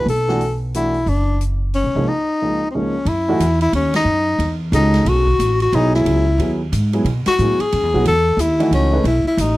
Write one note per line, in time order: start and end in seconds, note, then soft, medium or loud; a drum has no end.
0.06 1.02 B1 medium
0.06 0.59 A4 medium
0.06 open hi-hat soft
0.28 0.39 E3 medium
0.28 0.40 A3 medium
0.28 0.40 D4 medium
0.28 0.40 F#4 medium
0.28 snare soft
0.41 open hi-hat soft
0.74 0.93 E3 medium
0.74 0.93 A3 soft
0.74 0.93 D4 soft
0.74 1.10 E4 medium
0.74 0.93 F#4 medium
0.74 closed hi-hat soft
0.94 open hi-hat soft
1.06 1.81 F#1 medium
1.06 1.41 D4 medium
1.06 open hi-hat soft
1.41 closed hi-hat soft
1.73 2.10 C#4 medium
1.73 open hi-hat soft
1.84 1.94 B1 medium
1.95 2.06 C2 medium
1.95 2.06 C#2 medium
1.95 2.07 F3 medium
1.95 2.07 A#3 medium
1.95 2.07 D#4 medium
1.95 2.07 G#4 medium
2.08 2.69 D#4 medium
2.42 2.60 C#2 soft
2.42 2.60 F3 soft
2.42 2.60 A#3 soft
2.42 2.60 D#4 soft
2.42 2.60 G#4 medium
2.71 2.93 C#2 soft
2.71 2.77 C4 soft
2.75 2.93 F3 soft
2.75 2.93 A#3 soft
2.75 3.09 C#4 medium
2.75 2.93 D#4 soft
2.75 2.93 G#4 medium
3.05 3.38 F#2 medium
3.05 3.61 E4 medium
3.05 ride medium
3.28 3.39 E3 medium
3.28 3.39 A3 medium
3.28 3.40 D#4 medium
3.28 3.40 F#4 medium
3.40 3.72 E2 medium
3.40 hi-hat pedal medium
3.40 ride medium
3.61 3.73 E4 medium
3.61 ride soft
3.73 4.04 D#2 medium
3.73 3.94 C#4 medium
3.73 ride medium
3.94 4.58 D#4 medium
3.94 snare medium
3.94 ride medium
4.04 4.38 F#2 medium
4.39 4.72 E2 medium
4.39 ride medium
4.72 5.05 C#2 medium
4.72 5.23 C#4 medium
4.72 5.10 D#4 medium
4.72 5.23 F#4 medium
4.72 5.23 G#4 medium
4.72 5.24 A4 medium
4.72 hi-hat pedal medium
4.72 ride medium
4.94 snare soft
4.94 ride soft
5.05 5.38 B1 medium
5.05 5.61 F#4 medium
5.05 ride medium
5.27 kick soft
5.39 5.72 A1 medium
5.39 hi-hat pedal medium
5.39 ride medium
5.60 5.76 F#4 medium
5.60 ride soft
5.72 6.05 B1 medium
5.72 6.23 F#3 medium
5.72 6.23 B3 medium
5.72 5.95 D#4 loud
5.72 6.24 E4 medium
5.72 6.24 G#4 medium
5.72 ride medium
5.94 6.57 E4 medium
5.94 snare soft
6.05 6.37 C#2 medium
6.05 ride medium
6.38 6.71 D#2 medium
6.38 6.58 F#3 medium
6.38 6.58 B3 medium
6.38 6.59 E4 medium
6.38 6.59 G#4 medium
6.38 ride medium
6.72 7.04 G#2 medium
6.72 hi-hat pedal medium
6.72 ride medium
6.93 7.05 F#3 medium
6.93 7.05 B3 medium
6.93 7.05 E4 medium
6.93 7.05 G#4 medium
6.93 ride soft
7.04 7.24 B2 medium
7.04 ride medium
7.26 7.62 F#4 medium
7.26 muted upright bass stroke soft
7.26 snare medium
7.26 ride medium
7.38 7.58 A2 medium
7.38 7.58 F#3 medium
7.38 7.59 B3 medium
7.38 7.59 E4 soft
7.38 7.59 G#4 medium
7.38 hi-hat pedal medium
7.59 8.06 G#4 loud
7.59 muted upright bass stroke soft
7.59 ride soft
7.72 7.83 F#2 medium
7.72 ride medium
7.83 7.93 E2 medium
7.94 8.04 B1 medium
7.94 8.05 F#3 medium
7.94 8.05 B3 medium
7.94 8.05 E4 medium
7.94 8.05 F#4 medium
8.05 8.36 E2 medium
8.05 8.42 A4 loud
8.05 ride medium
8.37 8.70 D#2 medium
8.37 8.73 E4 medium
8.37 hi-hat pedal medium
8.37 ride medium
8.60 8.91 E3 medium
8.60 8.91 A3 medium
8.60 8.91 D#4 medium
8.60 8.91 F#4 medium
8.60 ride medium
8.71 9.03 C#2 medium
8.71 9.04 C#4 medium
8.71 ride medium
8.93 9.04 A3 medium
8.93 9.04 D#4 medium
8.93 9.04 G#4 medium
8.93 9.04 B4 medium
9.04 9.24 B1 medium
9.04 9.25 E4 medium
9.04 ride medium
9.24 9.42 E4 medium
9.24 muted upright bass stroke soft
9.37 9.57 A1 medium
9.37 9.57 D#4 medium
9.37 hi-hat pedal medium
9.37 ride medium